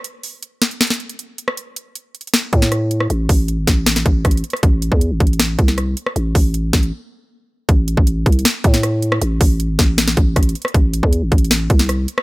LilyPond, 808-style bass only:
\new Staff \with { instrumentName = "808-style bass" } { \clef bass \time 4/4 \key a \minor \tempo 4 = 157 r1 | r2 r8 a,4. | a,,8 a,,8. gis,,16 a,,4 a,,8 a,,8 r8 | a,,8. e,8 gis,,16 a,,4 c,4 r8 |
a,,8 a,,4 a,,8 r2 | a,,8. a,,8. c,8 r8 a,4. | a,,8 a,,8. gis,,16 a,,4 a,,8 a,,8 r8 | a,,8. e,8 gis,,16 a,,4 c,4 r8 | }